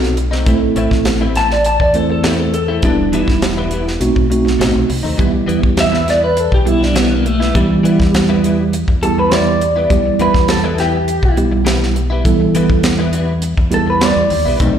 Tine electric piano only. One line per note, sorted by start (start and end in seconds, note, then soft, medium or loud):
0.00 0.16 C4 medium
0.00 0.16 D#4 medium
0.00 0.16 F#4 medium
0.00 0.16 A4 medium
0.46 1.23 A3 medium
0.46 1.23 C4 medium
0.46 1.24 E4 medium
0.46 1.23 A4 medium
1.94 2.52 A3 medium
1.94 2.52 C4 medium
1.94 2.52 E4 medium
1.94 2.52 C5 medium
2.82 3.59 G3 medium
2.82 3.59 B3 medium
2.82 3.60 E4 medium
2.82 3.60 G4 medium
4.00 4.24 A3 medium
4.00 4.25 C4 medium
4.00 4.25 D#4 medium
4.00 4.25 F#4 medium
4.30 4.88 A3 medium
4.30 4.88 C4 medium
4.30 4.88 D#4 medium
4.30 4.88 F#4 medium
5.18 5.95 G3 medium
5.18 5.95 B3 medium
5.18 5.95 E4 medium
5.18 5.96 G4 medium
6.66 7.23 G3 medium
6.66 7.23 B3 medium
6.66 7.23 E4 medium
6.66 7.23 G4 medium
7.54 8.31 G3 medium
7.54 8.31 B3 medium
7.54 8.31 E4 medium
7.54 8.31 G4 medium
9.02 9.59 G3 medium
9.02 9.59 B3 medium
9.02 9.59 E4 medium
9.02 9.59 G4 medium
9.90 10.66 G3 medium
9.90 10.66 B3 medium
9.90 10.66 E4 medium
9.90 10.66 G4 medium
11.37 11.94 G3 medium
11.37 11.94 B3 medium
11.37 11.94 E4 medium
11.37 11.94 G4 medium
12.25 13.01 G3 medium
12.25 13.01 B3 medium
12.25 13.01 E4 medium
12.25 13.01 A4 medium
13.70 14.28 G3 medium
13.70 14.28 B3 medium
13.70 14.28 E4 medium
13.70 14.28 G4 medium
14.60 14.79 F#3 medium
14.60 14.79 A3 medium
14.60 14.79 C4 medium
14.60 14.79 D#4 medium